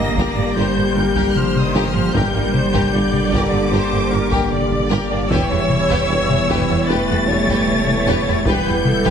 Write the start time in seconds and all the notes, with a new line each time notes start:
Already playing: G1 D3 G3 A#3 G4 C5 D#5 A#6, impact
0.16 G1 G2 G4 A#4 D5, taiko
0.36 G2 A#3 D4
0.55 G1 G2 G3 G4 A#4 C5 G6
0.75 G2 A#3 D4
0.95 G1 G2 D4 G4 A#4
1.14 G2 G4 A#4, taiko
1.35 F3 C5 F6, taiko mid
1.56 taiko mid
1.61 D#3 D#6
1.74 G1 G2 G4 A#4
1.89 F3 F6
1.94 G2 A#3 D4
2.14 G1 G2 D3 G3 A#3 G4 A#4 G6, taiko
2.34 G2 A#3 D4
2.54 C5, taiko mid
2.73 G2 G4 A#4, taiko
2.93 G1 G2 A#3 D4 D5
3.13 G2 D4 G4, taiko mid
3.32 G1 G2 D3 G4 A#4 D6, taiko
3.52 G2 A#3 D4
3.71 G1 G2 G4 A#4 C5
3.91 G2 A#3 D4
4.10 G1 G2 D4 G4 A#4
4.30 G2 G4 A#4, taiko
4.51 D5, taiko mid
4.71 taiko mid
4.90 G1 G2 G4 A#4
5.11 G2 A#3 D4
5.29 E1 E2 E3 G3 B3 E4 G4 B4 C#5 E6, taiko
5.50 E2 B3 E4
5.70 taiko mid
5.89 E2 G4 B4, taiko
6.09 E1 E2 B3 E4
6.29 E2 E4 G4, taiko mid
6.49 E1 E2 G4 B4, taiko
6.69 E2 B3 E4
6.88 E1 E2 A3 G4 B4 A6
7.09 E2 B3 E4
7.27 E1 E2 E4 G4 C#5
7.47 E2 G4 B4, taiko
7.67 taiko mid
7.86 taiko mid
8.06 E1 E2 G4 B4
8.26 E2 B3 E4
8.45 E1 E2 E3 G3 B3 E4 G4 B4 G6, taiko
8.66 E2 B3 E4
8.85 A4, taiko mid
9.04 E2 G4 B4, taiko